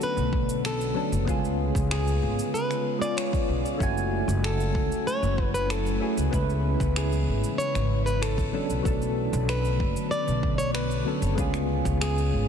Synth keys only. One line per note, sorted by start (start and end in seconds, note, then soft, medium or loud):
0.00 0.94 F#3 medium
0.00 0.95 B3 medium
0.00 0.96 C#4 medium
0.00 0.96 D4 medium
0.00 0.97 A4 loud
0.94 1.23 F#3 medium
0.94 1.23 B3 medium
0.94 1.24 C#4 medium
0.94 1.24 D4 medium
0.94 1.24 A4 medium
1.25 2.96 G#3 medium
1.25 2.97 B3 medium
1.25 2.98 C#4 medium
1.25 2.98 F4 medium
1.30 2.99 G#4 loud
2.99 3.75 G#3 medium
2.99 3.76 B3 medium
2.99 3.77 C#4 medium
3.03 3.77 F4 medium
3.03 3.78 G#4 medium
3.78 5.49 A3 medium
3.78 5.49 C#4 medium
3.78 5.50 E4 medium
3.78 5.51 F#4 medium
3.83 5.52 G#5 loud
6.00 6.28 A3 medium
6.00 6.29 C#4 medium
6.00 6.29 E4 medium
6.00 6.29 F#4 medium
6.00 6.30 G#4 medium
6.30 8.01 G#3 loud
6.30 8.02 B3 medium
6.30 8.02 C#4 medium
6.34 8.03 E4 medium
6.34 8.04 B4 loud
8.52 8.81 F#3 medium
8.52 8.81 B3 medium
8.52 8.81 C#4 medium
8.52 8.82 D4 medium
8.52 8.82 A4 medium
8.83 10.54 F#3 loud
8.83 10.55 A3 medium
8.83 10.55 B3 medium
8.83 10.56 D4 medium
8.88 10.57 A4 loud
11.05 11.34 F#3 medium
11.05 11.34 B3 medium
11.05 11.34 C#4 medium
11.05 11.35 D4 medium
11.05 11.35 A4 medium
11.35 12.48 G#3 loud
11.35 12.48 B3 medium
11.35 12.48 C#4 medium
11.39 12.48 F4 medium
11.39 12.48 G#4 loud